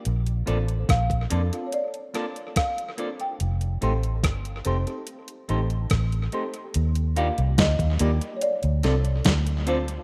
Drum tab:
HH |xxxxxxxxxxxxxxxx|xxxxxxxxxxxxxxxx|xxxxxxxxxxxxxxxx|
SD |----r-----r-r---|----r-------r---|----o-----o-o---|
BD |----oo------o---|----o-------o---|----oo------o---|